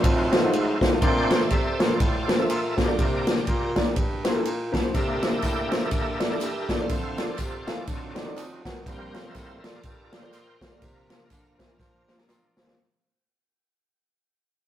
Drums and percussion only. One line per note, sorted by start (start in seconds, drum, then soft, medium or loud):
0.04 kick loud
0.04 ride bell medium
0.33 snare loud
0.33 ride bell medium
0.53 ride bell medium
0.81 kick loud
0.81 snare loud
0.81 ride bell medium
1.02 kick loud
1.02 ride bell medium
1.31 snare loud
1.31 ride bell medium
1.50 kick medium
1.50 ride bell medium
1.80 snare loud
1.80 ride bell medium
2.00 kick loud
2.00 ride bell medium
2.29 snare loud
2.29 ride bell medium
2.50 ride bell medium
2.78 kick medium
2.78 snare loud
2.78 ride bell medium
2.99 kick loud
2.99 ride bell medium
3.27 snare loud
3.27 ride bell medium
3.47 kick medium
3.47 ride bell medium
3.76 kick medium
3.76 snare loud
3.76 ride bell medium
3.96 kick loud
3.96 ride bell medium
4.25 snare loud
4.25 ride bell medium
4.45 ride bell medium
4.74 kick medium
4.74 snare loud
4.74 ride bell medium
4.94 kick loud
4.94 ride bell medium
4.94 tambourine medium
5.23 snare loud
5.23 ride bell medium
5.23 tambourine medium
5.42 kick medium
5.42 clap medium
5.42 ride bell medium
5.42 tambourine medium
5.72 snare loud
5.72 ride bell medium
5.72 tambourine medium
5.91 kick loud
5.91 ride bell medium
5.91 tambourine medium
6.20 snare loud
6.20 clap medium
6.20 ride bell medium
6.20 tambourine soft
6.41 clap loud
6.41 ride bell medium
6.41 tambourine medium
6.69 kick medium
6.69 snare loud
6.69 ride bell medium
6.69 tambourine medium
6.89 kick loud
6.89 ride bell medium
6.89 tambourine medium
7.18 snare loud
7.18 ride bell medium
7.18 tambourine medium
7.38 kick medium
7.38 clap medium
7.38 ride bell medium
7.38 tambourine medium
7.67 snare loud
7.67 ride bell medium
7.67 tambourine medium
7.87 kick loud
7.87 ride bell medium
7.87 tambourine medium
8.16 snare loud
8.16 clap medium
8.16 ride bell medium
8.16 tambourine soft
8.38 clap loud
8.38 ride bell medium
8.38 tambourine loud
8.65 kick medium
8.65 snare loud
8.65 ride bell medium
8.65 tambourine medium
8.86 kick loud
8.86 ride bell medium
8.86 tambourine medium
9.14 snare loud
9.14 ride bell medium
9.14 tambourine medium
9.34 kick medium
9.34 clap loud
9.34 ride bell medium
9.34 tambourine loud
9.64 snare loud
9.64 ride bell medium
9.64 tambourine medium
9.83 kick loud
9.83 ride bell medium
9.83 tambourine medium
10.13 snare loud
10.13 clap medium
10.13 ride bell medium
10.13 tambourine soft
10.33 clap loud
10.33 ride bell medium
10.33 tambourine medium
10.61 kick medium
10.61 snare loud
10.61 ride bell medium
10.61 tambourine medium
10.82 kick loud
10.82 ride bell medium
10.82 tambourine medium
11.10 snare loud
11.10 ride bell medium
11.10 tambourine medium
11.30 kick medium
11.30 clap medium
11.30 ride bell medium
11.30 tambourine medium
11.59 kick medium
11.59 snare loud
11.59 ride bell medium
11.59 tambourine medium
11.79 kick loud
11.79 snare medium
11.79 tambourine medium
12.08 snare medium
12.08 clap medium
12.08 tambourine soft
12.18 snare medium
12.29 snare medium
12.29 clap loud
12.29 tambourine loud
12.57 snare loud
12.57 tambourine medium
12.67 snare loud